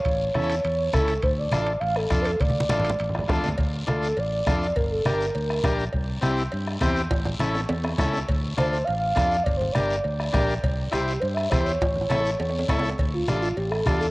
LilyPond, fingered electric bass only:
\new Staff \with { instrumentName = "Fingered electric bass" } { \clef bass \time 4/4 \key d \minor \tempo 4 = 204 a,,4 e,4 e,4 cis,4 | d,4 a,,4 a,,4 f,4 | d,4 a,,4 a,,4 e,8 d,8 | d,4 d,4 a,,4 f,4 |
g,,4 g,,4 d,4 bes,,4 | c,4 c,4 g,4 e,4 | a,,4 a,,4 e,4 cis,4 | d,4 d,4 a,,4 f,4 |
g,,4 g,,4 d,4 bes,,4 | c,4 c,4 g,4 e,4 | a,,4 a,,4 e,4 cis,4 | d,4 a,,4 a,,4 e,4 | }